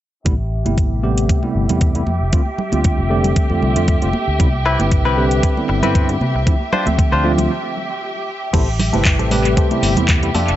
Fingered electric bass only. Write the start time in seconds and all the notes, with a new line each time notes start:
0.26 A1
0.66 G1
0.91 A1
1.55 G1
1.69 E2
2.07 F2
2.21 F1
2.72 D2
2.98 F1
3.50 F2
3.62 C2
3.76 F2
4.02 F1
4.28 D2
4.40 C2
4.79 G1
5.06 C2
5.69 G1
5.83 G2
6.21 C3
6.35 C2
6.87 D2
7.12 D2
8.54 A1
8.93 G1
9.19 A1
9.83 G1
9.97 E2
10.34 F2
10.48 F1